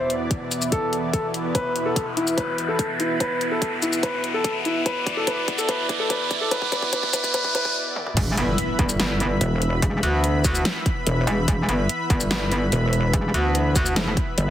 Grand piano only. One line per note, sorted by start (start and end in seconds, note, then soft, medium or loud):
0.00 0.11 C5 medium
0.72 0.95 A4 loud
1.13 1.25 A4 medium
1.55 1.72 B4 loud
1.86 2.03 A4 medium
2.17 2.36 E4 medium
2.37 2.54 B4 medium
2.68 2.85 A4 medium
3.00 3.19 E4 medium
3.20 3.37 B4 medium
3.51 3.68 A4 medium
3.82 4.01 E4 medium
4.03 4.20 B4 medium
4.34 4.51 A4 medium
4.65 4.84 E4 medium
4.86 5.03 B4 loud
5.17 5.26 A4 medium
5.27 5.44 B4 loud
5.58 5.67 A4 loud
5.69 5.85 B4 loud
6.00 6.08 A4 medium
6.10 6.27 B4 loud
6.41 6.50 A4 medium
6.51 6.68 B4 loud
6.72 6.89 B4 loud
6.93 7.10 B4 loud
7.13 7.30 B4 loud
7.34 7.51 B4 loud
7.55 7.72 B4 loud